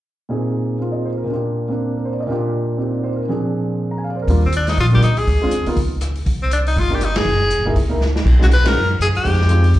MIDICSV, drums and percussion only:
0, 0, Header, 1, 2, 480
1, 0, Start_track
1, 0, Key_signature, -3, "major"
1, 0, Tempo, 248653
1, 569, Time_signature, 4, 2, 24, 8
1, 18906, End_track
2, 0, Start_track
2, 0, Title_t, "Drums"
2, 8264, Note_on_c, 9, 36, 29
2, 8264, Note_on_c, 9, 46, 36
2, 8457, Note_off_c, 9, 36, 0
2, 8457, Note_off_c, 9, 46, 0
2, 8735, Note_on_c, 9, 42, 46
2, 8928, Note_off_c, 9, 42, 0
2, 9016, Note_on_c, 9, 46, 34
2, 9025, Note_on_c, 9, 38, 41
2, 9209, Note_off_c, 9, 46, 0
2, 9216, Note_on_c, 9, 46, 37
2, 9218, Note_off_c, 9, 38, 0
2, 9222, Note_on_c, 9, 36, 28
2, 9409, Note_off_c, 9, 46, 0
2, 9416, Note_off_c, 9, 36, 0
2, 9698, Note_on_c, 9, 42, 43
2, 9708, Note_on_c, 9, 37, 52
2, 9891, Note_off_c, 9, 42, 0
2, 9901, Note_off_c, 9, 37, 0
2, 9975, Note_on_c, 9, 46, 34
2, 10168, Note_off_c, 9, 46, 0
2, 10178, Note_on_c, 9, 46, 37
2, 10179, Note_on_c, 9, 36, 30
2, 10371, Note_off_c, 9, 46, 0
2, 10372, Note_off_c, 9, 36, 0
2, 10640, Note_on_c, 9, 42, 42
2, 10833, Note_off_c, 9, 42, 0
2, 10930, Note_on_c, 9, 46, 34
2, 11123, Note_off_c, 9, 46, 0
2, 11128, Note_on_c, 9, 46, 38
2, 11134, Note_on_c, 9, 36, 29
2, 11321, Note_off_c, 9, 46, 0
2, 11327, Note_off_c, 9, 36, 0
2, 11600, Note_on_c, 9, 42, 43
2, 11609, Note_on_c, 9, 37, 54
2, 11793, Note_off_c, 9, 42, 0
2, 11802, Note_off_c, 9, 37, 0
2, 11881, Note_on_c, 9, 46, 33
2, 12074, Note_off_c, 9, 46, 0
2, 12089, Note_on_c, 9, 46, 37
2, 12095, Note_on_c, 9, 36, 29
2, 12282, Note_off_c, 9, 46, 0
2, 12288, Note_off_c, 9, 36, 0
2, 12572, Note_on_c, 9, 42, 47
2, 12765, Note_off_c, 9, 42, 0
2, 12867, Note_on_c, 9, 46, 34
2, 13056, Note_off_c, 9, 46, 0
2, 13056, Note_on_c, 9, 46, 36
2, 13057, Note_on_c, 9, 36, 28
2, 13250, Note_off_c, 9, 36, 0
2, 13250, Note_off_c, 9, 46, 0
2, 13529, Note_on_c, 9, 42, 45
2, 13539, Note_on_c, 9, 37, 57
2, 13722, Note_off_c, 9, 42, 0
2, 13732, Note_off_c, 9, 37, 0
2, 13814, Note_on_c, 9, 51, 62
2, 13824, Note_on_c, 9, 38, 69
2, 14007, Note_off_c, 9, 51, 0
2, 14017, Note_off_c, 9, 38, 0
2, 14486, Note_on_c, 9, 42, 44
2, 14679, Note_off_c, 9, 42, 0
2, 14979, Note_on_c, 9, 46, 41
2, 14980, Note_on_c, 9, 36, 31
2, 15172, Note_off_c, 9, 46, 0
2, 15173, Note_off_c, 9, 36, 0
2, 15463, Note_on_c, 9, 38, 38
2, 15656, Note_off_c, 9, 38, 0
2, 15746, Note_on_c, 9, 38, 52
2, 15939, Note_off_c, 9, 38, 0
2, 15940, Note_on_c, 9, 36, 55
2, 15949, Note_on_c, 9, 49, 54
2, 16133, Note_off_c, 9, 36, 0
2, 16142, Note_off_c, 9, 49, 0
2, 16242, Note_on_c, 9, 38, 49
2, 16433, Note_on_c, 9, 42, 46
2, 16435, Note_off_c, 9, 38, 0
2, 16626, Note_off_c, 9, 42, 0
2, 16709, Note_on_c, 9, 51, 61
2, 16718, Note_on_c, 9, 38, 67
2, 16902, Note_off_c, 9, 51, 0
2, 16911, Note_off_c, 9, 38, 0
2, 17389, Note_on_c, 9, 42, 45
2, 17398, Note_on_c, 9, 37, 54
2, 17582, Note_off_c, 9, 42, 0
2, 17591, Note_off_c, 9, 37, 0
2, 17665, Note_on_c, 9, 46, 33
2, 17858, Note_off_c, 9, 46, 0
2, 17862, Note_on_c, 9, 36, 29
2, 17862, Note_on_c, 9, 46, 38
2, 18017, Note_on_c, 9, 38, 25
2, 18055, Note_off_c, 9, 36, 0
2, 18055, Note_off_c, 9, 46, 0
2, 18169, Note_off_c, 9, 38, 0
2, 18169, Note_on_c, 9, 38, 37
2, 18317, Note_on_c, 9, 42, 46
2, 18362, Note_off_c, 9, 38, 0
2, 18510, Note_off_c, 9, 42, 0
2, 18606, Note_on_c, 9, 46, 34
2, 18799, Note_off_c, 9, 46, 0
2, 18800, Note_on_c, 9, 46, 41
2, 18815, Note_on_c, 9, 36, 30
2, 18906, Note_off_c, 9, 36, 0
2, 18906, Note_off_c, 9, 46, 0
2, 18906, End_track
0, 0, End_of_file